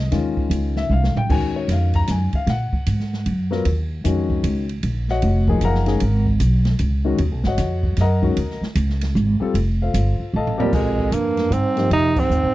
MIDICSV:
0, 0, Header, 1, 7, 480
1, 0, Start_track
1, 0, Key_signature, -6, "minor"
1, 0, Tempo, 393185
1, 143, Time_signature, 3, 2, 24, 8
1, 15315, End_track
2, 0, Start_track
2, 0, Title_t, "Grand piano"
2, 0, Program_c, 0, 0
2, 0, Note_on_c, 0, 75, 90
2, 141, Note_on_c, 0, 51, 72
2, 144, Note_on_c, 0, 56, 62
2, 147, Note_on_c, 0, 61, 59
2, 157, Note_on_c, 0, 65, 75
2, 418, Note_off_c, 0, 75, 0
2, 945, Note_on_c, 0, 76, 108
2, 1104, Note_off_c, 0, 76, 0
2, 1131, Note_on_c, 0, 77, 99
2, 1415, Note_off_c, 0, 77, 0
2, 1431, Note_on_c, 0, 79, 104
2, 1477, Note_off_c, 0, 51, 0
2, 1478, Note_off_c, 0, 56, 0
2, 1479, Note_off_c, 0, 61, 0
2, 1484, Note_off_c, 0, 65, 0
2, 1586, Note_on_c, 0, 51, 70
2, 1587, Note_off_c, 0, 79, 0
2, 1589, Note_on_c, 0, 56, 53
2, 1595, Note_on_c, 0, 61, 51
2, 1595, Note_on_c, 0, 66, 71
2, 1602, Note_on_c, 0, 80, 108
2, 1889, Note_off_c, 0, 80, 0
2, 1908, Note_on_c, 0, 73, 74
2, 2065, Note_off_c, 0, 73, 0
2, 2094, Note_on_c, 0, 77, 85
2, 2376, Note_off_c, 0, 77, 0
2, 2385, Note_on_c, 0, 82, 122
2, 2544, Note_off_c, 0, 82, 0
2, 2576, Note_on_c, 0, 80, 86
2, 2856, Note_off_c, 0, 80, 0
2, 2873, Note_on_c, 0, 77, 99
2, 2919, Note_off_c, 0, 51, 0
2, 2920, Note_off_c, 0, 56, 0
2, 2923, Note_off_c, 0, 61, 0
2, 2924, Note_off_c, 0, 66, 0
2, 3028, Note_off_c, 0, 77, 0
2, 3050, Note_on_c, 0, 78, 92
2, 4281, Note_on_c, 0, 54, 73
2, 4285, Note_on_c, 0, 59, 71
2, 4292, Note_on_c, 0, 65, 66
2, 4300, Note_on_c, 0, 70, 83
2, 4339, Note_off_c, 0, 78, 0
2, 4439, Note_off_c, 0, 54, 0
2, 4441, Note_off_c, 0, 59, 0
2, 4445, Note_off_c, 0, 65, 0
2, 4449, Note_off_c, 0, 70, 0
2, 4934, Note_on_c, 0, 51, 70
2, 4945, Note_on_c, 0, 56, 62
2, 4951, Note_on_c, 0, 61, 69
2, 4962, Note_on_c, 0, 66, 80
2, 5663, Note_off_c, 0, 51, 0
2, 5668, Note_off_c, 0, 56, 0
2, 5671, Note_off_c, 0, 61, 0
2, 5676, Note_off_c, 0, 66, 0
2, 6233, Note_on_c, 0, 78, 102
2, 6235, Note_on_c, 0, 66, 75
2, 6235, Note_on_c, 0, 73, 72
2, 6237, Note_on_c, 0, 75, 76
2, 6689, Note_on_c, 0, 53, 73
2, 6691, Note_on_c, 0, 58, 68
2, 6702, Note_on_c, 0, 63, 65
2, 6708, Note_on_c, 0, 68, 88
2, 6827, Note_off_c, 0, 78, 0
2, 6828, Note_off_c, 0, 66, 0
2, 6829, Note_off_c, 0, 73, 0
2, 6830, Note_off_c, 0, 75, 0
2, 6886, Note_on_c, 0, 82, 107
2, 6896, Note_on_c, 0, 77, 82
2, 6897, Note_on_c, 0, 78, 89
2, 6898, Note_on_c, 0, 70, 83
2, 7137, Note_off_c, 0, 53, 0
2, 7138, Note_off_c, 0, 58, 0
2, 7143, Note_off_c, 0, 63, 0
2, 7146, Note_off_c, 0, 68, 0
2, 7157, Note_on_c, 0, 51, 70
2, 7165, Note_on_c, 0, 56, 62
2, 7168, Note_on_c, 0, 61, 64
2, 7173, Note_on_c, 0, 68, 83
2, 7317, Note_off_c, 0, 51, 0
2, 7321, Note_off_c, 0, 56, 0
2, 7322, Note_off_c, 0, 61, 0
2, 7325, Note_off_c, 0, 68, 0
2, 7611, Note_off_c, 0, 82, 0
2, 7616, Note_off_c, 0, 77, 0
2, 7616, Note_off_c, 0, 78, 0
2, 7617, Note_off_c, 0, 70, 0
2, 8602, Note_on_c, 0, 51, 83
2, 8607, Note_on_c, 0, 56, 72
2, 8611, Note_on_c, 0, 61, 69
2, 8616, Note_on_c, 0, 66, 84
2, 8759, Note_off_c, 0, 51, 0
2, 8761, Note_off_c, 0, 56, 0
2, 8764, Note_off_c, 0, 61, 0
2, 8766, Note_off_c, 0, 66, 0
2, 9115, Note_on_c, 0, 78, 88
2, 9121, Note_on_c, 0, 66, 66
2, 9127, Note_on_c, 0, 75, 71
2, 9130, Note_on_c, 0, 73, 69
2, 9708, Note_off_c, 0, 78, 0
2, 9711, Note_off_c, 0, 66, 0
2, 9714, Note_off_c, 0, 75, 0
2, 9715, Note_off_c, 0, 73, 0
2, 9776, Note_on_c, 0, 75, 93
2, 9778, Note_on_c, 0, 82, 100
2, 9784, Note_on_c, 0, 78, 78
2, 9785, Note_on_c, 0, 70, 74
2, 10035, Note_on_c, 0, 51, 71
2, 10040, Note_on_c, 0, 56, 62
2, 10052, Note_on_c, 0, 61, 74
2, 10052, Note_on_c, 0, 66, 80
2, 10195, Note_off_c, 0, 51, 0
2, 10197, Note_off_c, 0, 56, 0
2, 10203, Note_off_c, 0, 61, 0
2, 10203, Note_off_c, 0, 66, 0
2, 10495, Note_off_c, 0, 75, 0
2, 10496, Note_off_c, 0, 82, 0
2, 10499, Note_off_c, 0, 70, 0
2, 10499, Note_off_c, 0, 78, 0
2, 11476, Note_on_c, 0, 55, 73
2, 11490, Note_on_c, 0, 60, 71
2, 11495, Note_on_c, 0, 65, 70
2, 11501, Note_on_c, 0, 69, 81
2, 11635, Note_off_c, 0, 55, 0
2, 11642, Note_off_c, 0, 60, 0
2, 11645, Note_off_c, 0, 65, 0
2, 11648, Note_off_c, 0, 69, 0
2, 11989, Note_on_c, 0, 77, 80
2, 11992, Note_on_c, 0, 69, 58
2, 11995, Note_on_c, 0, 65, 61
2, 11997, Note_on_c, 0, 72, 57
2, 12585, Note_off_c, 0, 77, 0
2, 12586, Note_off_c, 0, 69, 0
2, 12588, Note_off_c, 0, 65, 0
2, 12589, Note_off_c, 0, 72, 0
2, 12648, Note_on_c, 0, 81, 99
2, 12650, Note_on_c, 0, 77, 83
2, 12652, Note_on_c, 0, 69, 72
2, 12657, Note_on_c, 0, 75, 86
2, 12911, Note_on_c, 0, 67, 82
2, 12913, Note_on_c, 0, 60, 82
2, 12926, Note_on_c, 0, 65, 77
2, 12932, Note_on_c, 0, 70, 94
2, 13000, Note_off_c, 0, 81, 0
2, 13001, Note_off_c, 0, 77, 0
2, 13003, Note_off_c, 0, 69, 0
2, 13005, Note_off_c, 0, 75, 0
2, 13537, Note_off_c, 0, 67, 0
2, 13538, Note_off_c, 0, 60, 0
2, 13544, Note_off_c, 0, 65, 0
2, 13547, Note_off_c, 0, 70, 0
2, 14357, Note_on_c, 0, 53, 55
2, 14364, Note_on_c, 0, 58, 55
2, 14370, Note_on_c, 0, 63, 59
2, 14378, Note_on_c, 0, 67, 71
2, 14982, Note_off_c, 0, 53, 0
2, 14986, Note_off_c, 0, 58, 0
2, 14989, Note_off_c, 0, 63, 0
2, 14993, Note_off_c, 0, 67, 0
2, 15315, End_track
3, 0, Start_track
3, 0, Title_t, "Tenor saxophone"
3, 0, Program_c, 1, 66
3, 12934, Note_on_c, 1, 55, 77
3, 13109, Note_on_c, 1, 56, 78
3, 13127, Note_off_c, 1, 55, 0
3, 13596, Note_on_c, 1, 58, 80
3, 13614, Note_off_c, 1, 56, 0
3, 14075, Note_on_c, 1, 60, 89
3, 14094, Note_off_c, 1, 58, 0
3, 14549, Note_off_c, 1, 60, 0
3, 14564, Note_on_c, 1, 63, 107
3, 14879, Note_on_c, 1, 60, 89
3, 14897, Note_off_c, 1, 63, 0
3, 15315, Note_off_c, 1, 60, 0
3, 15315, End_track
4, 0, Start_track
4, 0, Title_t, "Bass clarinet"
4, 0, Program_c, 2, 71
4, 12930, Note_on_c, 2, 39, 78
4, 13093, Note_on_c, 2, 41, 73
4, 13111, Note_off_c, 2, 39, 0
4, 13584, Note_on_c, 2, 43, 87
4, 13603, Note_off_c, 2, 41, 0
4, 14058, Note_on_c, 2, 44, 75
4, 14076, Note_off_c, 2, 43, 0
4, 14533, Note_off_c, 2, 44, 0
4, 14541, Note_on_c, 2, 48, 86
4, 14841, Note_on_c, 2, 44, 76
4, 14859, Note_off_c, 2, 48, 0
4, 15315, Note_off_c, 2, 44, 0
4, 15315, End_track
5, 0, Start_track
5, 0, Title_t, "Upright bass"
5, 0, Program_c, 3, 32
5, 0, Note_on_c, 3, 36, 96
5, 124, Note_off_c, 3, 36, 0
5, 136, Note_on_c, 3, 39, 78
5, 604, Note_off_c, 3, 39, 0
5, 609, Note_on_c, 3, 37, 89
5, 1080, Note_off_c, 3, 37, 0
5, 1093, Note_on_c, 3, 36, 86
5, 1383, Note_off_c, 3, 36, 0
5, 1581, Note_on_c, 3, 39, 85
5, 2046, Note_off_c, 3, 39, 0
5, 2053, Note_on_c, 3, 41, 91
5, 2522, Note_off_c, 3, 41, 0
5, 2542, Note_on_c, 3, 42, 82
5, 2827, Note_off_c, 3, 42, 0
5, 3011, Note_on_c, 3, 46, 81
5, 3301, Note_off_c, 3, 46, 0
5, 3499, Note_on_c, 3, 44, 83
5, 3965, Note_off_c, 3, 44, 0
5, 3980, Note_on_c, 3, 42, 82
5, 4445, Note_off_c, 3, 42, 0
5, 4459, Note_on_c, 3, 39, 81
5, 4925, Note_off_c, 3, 39, 0
5, 4942, Note_on_c, 3, 41, 88
5, 5406, Note_off_c, 3, 41, 0
5, 5415, Note_on_c, 3, 37, 91
5, 5882, Note_off_c, 3, 37, 0
5, 5899, Note_on_c, 3, 34, 90
5, 6364, Note_off_c, 3, 34, 0
5, 6381, Note_on_c, 3, 29, 101
5, 6845, Note_off_c, 3, 29, 0
5, 6850, Note_on_c, 3, 30, 82
5, 7320, Note_off_c, 3, 30, 0
5, 7342, Note_on_c, 3, 32, 86
5, 7806, Note_off_c, 3, 32, 0
5, 7811, Note_on_c, 3, 35, 93
5, 8280, Note_off_c, 3, 35, 0
5, 8296, Note_on_c, 3, 37, 88
5, 8762, Note_off_c, 3, 37, 0
5, 8772, Note_on_c, 3, 39, 90
5, 8926, Note_off_c, 3, 39, 0
5, 8926, Note_on_c, 3, 35, 61
5, 9083, Note_off_c, 3, 35, 0
5, 9090, Note_on_c, 3, 32, 72
5, 9242, Note_off_c, 3, 32, 0
5, 9252, Note_on_c, 3, 41, 98
5, 9720, Note_off_c, 3, 41, 0
5, 9729, Note_on_c, 3, 42, 84
5, 10198, Note_off_c, 3, 42, 0
5, 10213, Note_on_c, 3, 39, 78
5, 10501, Note_off_c, 3, 39, 0
5, 10688, Note_on_c, 3, 37, 106
5, 11157, Note_off_c, 3, 37, 0
5, 11172, Note_on_c, 3, 32, 102
5, 11460, Note_off_c, 3, 32, 0
5, 11647, Note_on_c, 3, 29, 83
5, 12117, Note_off_c, 3, 29, 0
5, 12133, Note_on_c, 3, 31, 86
5, 12421, Note_off_c, 3, 31, 0
5, 12616, Note_on_c, 3, 33, 86
5, 13083, Note_off_c, 3, 33, 0
5, 13097, Note_on_c, 3, 34, 74
5, 13561, Note_off_c, 3, 34, 0
5, 13568, Note_on_c, 3, 41, 80
5, 14031, Note_off_c, 3, 41, 0
5, 14038, Note_on_c, 3, 43, 84
5, 14515, Note_off_c, 3, 43, 0
5, 14530, Note_on_c, 3, 41, 78
5, 15002, Note_off_c, 3, 41, 0
5, 15011, Note_on_c, 3, 39, 86
5, 15174, Note_on_c, 3, 34, 59
5, 15192, Note_off_c, 3, 39, 0
5, 15315, Note_off_c, 3, 34, 0
5, 15315, End_track
6, 0, Start_track
6, 0, Title_t, "Muted upright bass strokes"
6, 1404, Note_on_c, 9, 29, 47
6, 1526, Note_off_c, 9, 29, 0
6, 2845, Note_on_c, 9, 29, 47
6, 2967, Note_off_c, 9, 29, 0
6, 3326, Note_on_c, 9, 29, 47
6, 3448, Note_off_c, 9, 29, 0
6, 10516, Note_on_c, 9, 29, 47
6, 10638, Note_off_c, 9, 29, 0
6, 11483, Note_on_c, 9, 29, 47
6, 11606, Note_off_c, 9, 29, 0
6, 12441, Note_on_c, 9, 29, 41
6, 12563, Note_off_c, 9, 29, 0
6, 15315, End_track
7, 0, Start_track
7, 0, Title_t, "Drums"
7, 142, Note_on_c, 9, 51, 66
7, 147, Note_on_c, 9, 38, 44
7, 265, Note_off_c, 9, 51, 0
7, 269, Note_off_c, 9, 38, 0
7, 451, Note_on_c, 9, 36, 58
7, 573, Note_off_c, 9, 36, 0
7, 621, Note_on_c, 9, 44, 61
7, 621, Note_on_c, 9, 51, 85
7, 743, Note_off_c, 9, 44, 0
7, 743, Note_off_c, 9, 51, 0
7, 929, Note_on_c, 9, 38, 50
7, 1051, Note_off_c, 9, 38, 0
7, 1110, Note_on_c, 9, 48, 60
7, 1232, Note_off_c, 9, 48, 0
7, 1267, Note_on_c, 9, 38, 69
7, 1389, Note_off_c, 9, 38, 0
7, 1425, Note_on_c, 9, 43, 95
7, 1547, Note_off_c, 9, 43, 0
7, 1584, Note_on_c, 9, 36, 86
7, 1587, Note_on_c, 9, 49, 93
7, 1706, Note_off_c, 9, 36, 0
7, 1709, Note_off_c, 9, 49, 0
7, 2059, Note_on_c, 9, 44, 59
7, 2059, Note_on_c, 9, 51, 76
7, 2064, Note_on_c, 9, 38, 41
7, 2181, Note_off_c, 9, 44, 0
7, 2181, Note_off_c, 9, 51, 0
7, 2186, Note_off_c, 9, 38, 0
7, 2362, Note_on_c, 9, 51, 43
7, 2367, Note_on_c, 9, 36, 51
7, 2484, Note_off_c, 9, 51, 0
7, 2489, Note_off_c, 9, 36, 0
7, 2532, Note_on_c, 9, 44, 70
7, 2532, Note_on_c, 9, 51, 73
7, 2537, Note_on_c, 9, 38, 38
7, 2654, Note_off_c, 9, 44, 0
7, 2654, Note_off_c, 9, 51, 0
7, 2659, Note_off_c, 9, 38, 0
7, 2839, Note_on_c, 9, 51, 47
7, 2847, Note_on_c, 9, 36, 54
7, 2961, Note_off_c, 9, 51, 0
7, 2969, Note_off_c, 9, 36, 0
7, 3016, Note_on_c, 9, 51, 66
7, 3021, Note_on_c, 9, 38, 45
7, 3138, Note_off_c, 9, 51, 0
7, 3143, Note_off_c, 9, 38, 0
7, 3328, Note_on_c, 9, 36, 59
7, 3450, Note_off_c, 9, 36, 0
7, 3496, Note_on_c, 9, 44, 63
7, 3496, Note_on_c, 9, 51, 80
7, 3618, Note_off_c, 9, 44, 0
7, 3618, Note_off_c, 9, 51, 0
7, 3660, Note_on_c, 9, 38, 33
7, 3782, Note_off_c, 9, 38, 0
7, 3824, Note_on_c, 9, 38, 40
7, 3946, Note_off_c, 9, 38, 0
7, 3977, Note_on_c, 9, 51, 67
7, 4099, Note_off_c, 9, 51, 0
7, 4293, Note_on_c, 9, 38, 35
7, 4415, Note_off_c, 9, 38, 0
7, 4457, Note_on_c, 9, 51, 77
7, 4579, Note_off_c, 9, 51, 0
7, 4939, Note_on_c, 9, 44, 72
7, 4939, Note_on_c, 9, 51, 77
7, 5062, Note_off_c, 9, 44, 0
7, 5062, Note_off_c, 9, 51, 0
7, 5247, Note_on_c, 9, 36, 56
7, 5369, Note_off_c, 9, 36, 0
7, 5416, Note_on_c, 9, 44, 53
7, 5416, Note_on_c, 9, 51, 88
7, 5538, Note_off_c, 9, 44, 0
7, 5538, Note_off_c, 9, 51, 0
7, 5727, Note_on_c, 9, 51, 47
7, 5849, Note_off_c, 9, 51, 0
7, 5893, Note_on_c, 9, 51, 77
7, 6015, Note_off_c, 9, 51, 0
7, 6205, Note_on_c, 9, 38, 36
7, 6327, Note_off_c, 9, 38, 0
7, 6371, Note_on_c, 9, 51, 72
7, 6493, Note_off_c, 9, 51, 0
7, 6683, Note_on_c, 9, 36, 63
7, 6805, Note_off_c, 9, 36, 0
7, 6847, Note_on_c, 9, 44, 69
7, 6847, Note_on_c, 9, 51, 72
7, 6969, Note_off_c, 9, 44, 0
7, 6969, Note_off_c, 9, 51, 0
7, 7015, Note_on_c, 9, 38, 36
7, 7137, Note_off_c, 9, 38, 0
7, 7154, Note_on_c, 9, 51, 47
7, 7169, Note_on_c, 9, 38, 49
7, 7276, Note_off_c, 9, 51, 0
7, 7291, Note_off_c, 9, 38, 0
7, 7326, Note_on_c, 9, 51, 78
7, 7448, Note_off_c, 9, 51, 0
7, 7640, Note_on_c, 9, 36, 53
7, 7762, Note_off_c, 9, 36, 0
7, 7811, Note_on_c, 9, 44, 68
7, 7811, Note_on_c, 9, 51, 81
7, 7933, Note_off_c, 9, 44, 0
7, 7933, Note_off_c, 9, 51, 0
7, 8116, Note_on_c, 9, 51, 43
7, 8121, Note_on_c, 9, 38, 59
7, 8238, Note_off_c, 9, 51, 0
7, 8243, Note_off_c, 9, 38, 0
7, 8286, Note_on_c, 9, 44, 63
7, 8286, Note_on_c, 9, 51, 77
7, 8408, Note_off_c, 9, 44, 0
7, 8408, Note_off_c, 9, 51, 0
7, 8769, Note_on_c, 9, 51, 74
7, 8891, Note_off_c, 9, 51, 0
7, 9077, Note_on_c, 9, 38, 67
7, 9200, Note_off_c, 9, 38, 0
7, 9249, Note_on_c, 9, 44, 68
7, 9249, Note_on_c, 9, 51, 76
7, 9254, Note_on_c, 9, 38, 42
7, 9371, Note_off_c, 9, 44, 0
7, 9371, Note_off_c, 9, 51, 0
7, 9376, Note_off_c, 9, 38, 0
7, 9561, Note_on_c, 9, 36, 55
7, 9683, Note_off_c, 9, 36, 0
7, 9724, Note_on_c, 9, 51, 73
7, 9729, Note_on_c, 9, 38, 39
7, 9846, Note_off_c, 9, 51, 0
7, 9851, Note_off_c, 9, 38, 0
7, 10041, Note_on_c, 9, 36, 59
7, 10164, Note_off_c, 9, 36, 0
7, 10213, Note_on_c, 9, 51, 80
7, 10335, Note_off_c, 9, 51, 0
7, 10379, Note_on_c, 9, 38, 30
7, 10502, Note_off_c, 9, 38, 0
7, 10534, Note_on_c, 9, 38, 52
7, 10656, Note_off_c, 9, 38, 0
7, 10686, Note_on_c, 9, 44, 75
7, 10686, Note_on_c, 9, 51, 93
7, 10808, Note_off_c, 9, 44, 0
7, 10808, Note_off_c, 9, 51, 0
7, 10860, Note_on_c, 9, 38, 34
7, 10982, Note_off_c, 9, 38, 0
7, 11002, Note_on_c, 9, 51, 77
7, 11023, Note_on_c, 9, 38, 47
7, 11124, Note_off_c, 9, 51, 0
7, 11145, Note_off_c, 9, 38, 0
7, 11180, Note_on_c, 9, 44, 57
7, 11302, Note_off_c, 9, 44, 0
7, 11658, Note_on_c, 9, 51, 85
7, 11780, Note_off_c, 9, 51, 0
7, 12136, Note_on_c, 9, 44, 72
7, 12136, Note_on_c, 9, 51, 83
7, 12258, Note_off_c, 9, 44, 0
7, 12258, Note_off_c, 9, 51, 0
7, 12781, Note_on_c, 9, 43, 71
7, 12903, Note_off_c, 9, 43, 0
7, 12937, Note_on_c, 9, 43, 94
7, 13059, Note_off_c, 9, 43, 0
7, 13094, Note_on_c, 9, 38, 36
7, 13094, Note_on_c, 9, 49, 79
7, 13097, Note_on_c, 9, 36, 83
7, 13216, Note_off_c, 9, 38, 0
7, 13216, Note_off_c, 9, 49, 0
7, 13219, Note_off_c, 9, 36, 0
7, 13405, Note_on_c, 9, 36, 45
7, 13528, Note_off_c, 9, 36, 0
7, 13576, Note_on_c, 9, 44, 55
7, 13576, Note_on_c, 9, 51, 68
7, 13698, Note_off_c, 9, 44, 0
7, 13698, Note_off_c, 9, 51, 0
7, 13882, Note_on_c, 9, 51, 40
7, 13887, Note_on_c, 9, 38, 51
7, 14004, Note_off_c, 9, 51, 0
7, 14009, Note_off_c, 9, 38, 0
7, 14060, Note_on_c, 9, 44, 51
7, 14060, Note_on_c, 9, 51, 68
7, 14182, Note_off_c, 9, 44, 0
7, 14182, Note_off_c, 9, 51, 0
7, 14365, Note_on_c, 9, 51, 41
7, 14370, Note_on_c, 9, 38, 41
7, 14487, Note_off_c, 9, 51, 0
7, 14492, Note_off_c, 9, 38, 0
7, 14540, Note_on_c, 9, 51, 65
7, 14662, Note_off_c, 9, 51, 0
7, 14848, Note_on_c, 9, 36, 83
7, 14849, Note_on_c, 9, 49, 68
7, 14970, Note_off_c, 9, 36, 0
7, 14972, Note_off_c, 9, 49, 0
7, 15025, Note_on_c, 9, 44, 53
7, 15147, Note_off_c, 9, 44, 0
7, 15315, End_track
0, 0, End_of_file